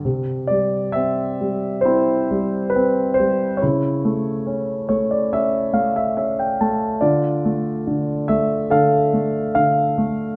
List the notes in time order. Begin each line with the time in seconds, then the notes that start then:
0.05 C3
0.47 G3 D5
0.92 C4 E5
1.41 G3
1.81 C5
1.85 C4 E4
2.31 G3
2.70 B4
2.76 C4
3.14 C5
3.20 G3
3.57 C#5
3.62 C#3 E4
4.05 A3
4.47 C#4
4.89 A3 C#5
5.11 D5
5.33 C#4 E5
5.73 A3 F5
5.96 E5
6.17 C#4 E5
6.39 G5
6.61 A3 A5
7.01 D3 F4 D5
7.45 A3
7.87 D3
8.28 A3 E5
8.70 D3 A4 F5
9.13 A3
9.55 D3 F5
9.98 A3